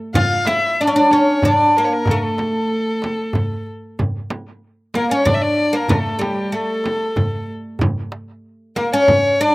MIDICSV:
0, 0, Header, 1, 5, 480
1, 0, Start_track
1, 0, Tempo, 637620
1, 114, Time_signature, 3, 2, 24, 8
1, 7188, End_track
2, 0, Start_track
2, 0, Title_t, "Violin"
2, 0, Program_c, 0, 40
2, 113, Note_on_c, 0, 77, 80
2, 351, Note_on_c, 0, 76, 83
2, 362, Note_off_c, 0, 77, 0
2, 607, Note_on_c, 0, 74, 75
2, 618, Note_off_c, 0, 76, 0
2, 700, Note_off_c, 0, 74, 0
2, 705, Note_on_c, 0, 74, 77
2, 844, Note_on_c, 0, 73, 73
2, 856, Note_off_c, 0, 74, 0
2, 1083, Note_on_c, 0, 74, 78
2, 1094, Note_off_c, 0, 73, 0
2, 1330, Note_on_c, 0, 70, 71
2, 1341, Note_off_c, 0, 74, 0
2, 1388, Note_on_c, 0, 73, 57
2, 1400, Note_off_c, 0, 70, 0
2, 1451, Note_on_c, 0, 70, 71
2, 1463, Note_off_c, 0, 73, 0
2, 1582, Note_on_c, 0, 69, 63
2, 1593, Note_off_c, 0, 70, 0
2, 1629, Note_on_c, 0, 70, 51
2, 1641, Note_off_c, 0, 69, 0
2, 1676, Note_on_c, 0, 69, 65
2, 1687, Note_off_c, 0, 70, 0
2, 2765, Note_off_c, 0, 69, 0
2, 3733, Note_on_c, 0, 70, 73
2, 3838, Note_off_c, 0, 70, 0
2, 3853, Note_on_c, 0, 73, 74
2, 3962, Note_on_c, 0, 74, 84
2, 3973, Note_off_c, 0, 73, 0
2, 4022, Note_on_c, 0, 76, 70
2, 4034, Note_off_c, 0, 74, 0
2, 4079, Note_on_c, 0, 74, 84
2, 4090, Note_off_c, 0, 76, 0
2, 4326, Note_on_c, 0, 70, 73
2, 4337, Note_off_c, 0, 74, 0
2, 4440, Note_on_c, 0, 69, 70
2, 4451, Note_off_c, 0, 70, 0
2, 4679, Note_on_c, 0, 67, 67
2, 4690, Note_off_c, 0, 69, 0
2, 4920, Note_on_c, 0, 69, 69
2, 4931, Note_off_c, 0, 67, 0
2, 5639, Note_off_c, 0, 69, 0
2, 6596, Note_on_c, 0, 70, 70
2, 6709, Note_off_c, 0, 70, 0
2, 6718, Note_on_c, 0, 73, 79
2, 7080, Note_on_c, 0, 74, 87
2, 7091, Note_off_c, 0, 73, 0
2, 7188, Note_off_c, 0, 74, 0
2, 7188, End_track
3, 0, Start_track
3, 0, Title_t, "Oud"
3, 0, Program_c, 1, 24
3, 115, Note_on_c, 1, 65, 92
3, 353, Note_off_c, 1, 65, 0
3, 356, Note_on_c, 1, 64, 90
3, 603, Note_off_c, 1, 64, 0
3, 609, Note_on_c, 1, 62, 80
3, 655, Note_off_c, 1, 62, 0
3, 658, Note_on_c, 1, 61, 73
3, 706, Note_off_c, 1, 61, 0
3, 721, Note_on_c, 1, 62, 85
3, 846, Note_off_c, 1, 62, 0
3, 849, Note_on_c, 1, 61, 79
3, 1089, Note_off_c, 1, 61, 0
3, 1092, Note_on_c, 1, 62, 87
3, 1332, Note_off_c, 1, 62, 0
3, 1340, Note_on_c, 1, 58, 80
3, 1576, Note_off_c, 1, 58, 0
3, 1590, Note_on_c, 1, 57, 72
3, 2745, Note_off_c, 1, 57, 0
3, 3728, Note_on_c, 1, 58, 74
3, 3847, Note_off_c, 1, 58, 0
3, 3849, Note_on_c, 1, 61, 89
3, 3952, Note_off_c, 1, 61, 0
3, 3955, Note_on_c, 1, 62, 90
3, 4313, Note_on_c, 1, 58, 83
3, 4328, Note_off_c, 1, 62, 0
3, 4433, Note_off_c, 1, 58, 0
3, 4436, Note_on_c, 1, 57, 78
3, 4655, Note_off_c, 1, 57, 0
3, 4658, Note_on_c, 1, 55, 73
3, 4907, Note_off_c, 1, 55, 0
3, 4910, Note_on_c, 1, 57, 71
3, 5604, Note_off_c, 1, 57, 0
3, 6596, Note_on_c, 1, 58, 77
3, 6721, Note_off_c, 1, 58, 0
3, 6726, Note_on_c, 1, 61, 98
3, 7078, Note_off_c, 1, 61, 0
3, 7081, Note_on_c, 1, 62, 100
3, 7188, Note_off_c, 1, 62, 0
3, 7188, End_track
4, 0, Start_track
4, 0, Title_t, "Darbuka"
4, 107, Note_on_c, 9, 64, 97
4, 182, Note_off_c, 9, 64, 0
4, 341, Note_on_c, 9, 63, 61
4, 416, Note_off_c, 9, 63, 0
4, 833, Note_on_c, 9, 63, 59
4, 908, Note_off_c, 9, 63, 0
4, 1071, Note_on_c, 9, 64, 98
4, 1146, Note_off_c, 9, 64, 0
4, 1547, Note_on_c, 9, 64, 92
4, 1622, Note_off_c, 9, 64, 0
4, 1793, Note_on_c, 9, 63, 63
4, 1869, Note_off_c, 9, 63, 0
4, 2031, Note_on_c, 9, 62, 25
4, 2106, Note_off_c, 9, 62, 0
4, 2274, Note_on_c, 9, 63, 58
4, 2349, Note_off_c, 9, 63, 0
4, 2508, Note_on_c, 9, 64, 92
4, 2583, Note_off_c, 9, 64, 0
4, 2758, Note_on_c, 9, 62, 24
4, 2834, Note_off_c, 9, 62, 0
4, 3004, Note_on_c, 9, 64, 89
4, 3079, Note_off_c, 9, 64, 0
4, 3244, Note_on_c, 9, 63, 66
4, 3319, Note_off_c, 9, 63, 0
4, 3723, Note_on_c, 9, 63, 64
4, 3799, Note_off_c, 9, 63, 0
4, 3961, Note_on_c, 9, 64, 86
4, 4036, Note_off_c, 9, 64, 0
4, 4430, Note_on_c, 9, 64, 91
4, 4505, Note_off_c, 9, 64, 0
4, 4679, Note_on_c, 9, 63, 70
4, 4754, Note_off_c, 9, 63, 0
4, 5149, Note_on_c, 9, 63, 61
4, 5224, Note_off_c, 9, 63, 0
4, 5391, Note_on_c, 9, 64, 92
4, 5467, Note_off_c, 9, 64, 0
4, 5864, Note_on_c, 9, 64, 88
4, 5939, Note_off_c, 9, 64, 0
4, 6112, Note_on_c, 9, 63, 69
4, 6188, Note_off_c, 9, 63, 0
4, 6596, Note_on_c, 9, 63, 62
4, 6672, Note_off_c, 9, 63, 0
4, 6836, Note_on_c, 9, 64, 90
4, 6911, Note_off_c, 9, 64, 0
4, 7188, End_track
5, 0, Start_track
5, 0, Title_t, "Frame drum"
5, 115, Note_on_c, 9, 64, 108
5, 190, Note_off_c, 9, 64, 0
5, 351, Note_on_c, 9, 64, 75
5, 426, Note_off_c, 9, 64, 0
5, 838, Note_on_c, 9, 64, 65
5, 913, Note_off_c, 9, 64, 0
5, 1079, Note_on_c, 9, 64, 83
5, 1154, Note_off_c, 9, 64, 0
5, 1561, Note_on_c, 9, 64, 82
5, 1636, Note_off_c, 9, 64, 0
5, 1800, Note_on_c, 9, 64, 59
5, 1875, Note_off_c, 9, 64, 0
5, 2287, Note_on_c, 9, 64, 69
5, 2363, Note_off_c, 9, 64, 0
5, 2524, Note_on_c, 9, 64, 74
5, 2599, Note_off_c, 9, 64, 0
5, 3006, Note_on_c, 9, 64, 79
5, 3081, Note_off_c, 9, 64, 0
5, 3240, Note_on_c, 9, 64, 67
5, 3315, Note_off_c, 9, 64, 0
5, 3721, Note_on_c, 9, 64, 70
5, 3796, Note_off_c, 9, 64, 0
5, 3961, Note_on_c, 9, 64, 86
5, 4036, Note_off_c, 9, 64, 0
5, 4442, Note_on_c, 9, 64, 100
5, 4518, Note_off_c, 9, 64, 0
5, 4678, Note_on_c, 9, 64, 72
5, 4754, Note_off_c, 9, 64, 0
5, 5161, Note_on_c, 9, 64, 70
5, 5237, Note_off_c, 9, 64, 0
5, 5395, Note_on_c, 9, 64, 82
5, 5470, Note_off_c, 9, 64, 0
5, 5882, Note_on_c, 9, 64, 102
5, 5957, Note_off_c, 9, 64, 0
5, 6597, Note_on_c, 9, 64, 72
5, 6672, Note_off_c, 9, 64, 0
5, 6836, Note_on_c, 9, 64, 91
5, 6911, Note_off_c, 9, 64, 0
5, 7188, End_track
0, 0, End_of_file